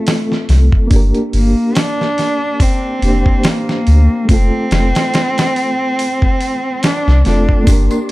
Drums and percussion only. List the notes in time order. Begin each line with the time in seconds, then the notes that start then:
0.07 snare, open hi-hat
0.32 snare
0.49 snare, open hi-hat
0.72 kick
0.91 kick, open hi-hat
1.15 closed hi-hat
1.33 open hi-hat
1.75 snare, open hi-hat
2.01 snare
2.18 snare, open hi-hat
2.60 kick, open hi-hat
3.02 open hi-hat
3.26 kick
3.44 snare, open hi-hat
3.69 snare
3.87 open hi-hat
4.29 kick, open hi-hat
4.71 snare, open hi-hat
4.95 snare, open hi-hat
5.14 snare, open hi-hat
5.38 snare, open hi-hat
5.56 open hi-hat
5.99 open hi-hat
6.22 kick
6.41 open hi-hat
6.83 snare, open hi-hat
7.08 snare
7.25 snare, open hi-hat
7.49 kick
7.67 kick, open hi-hat, tambourine
7.91 closed hi-hat, tambourine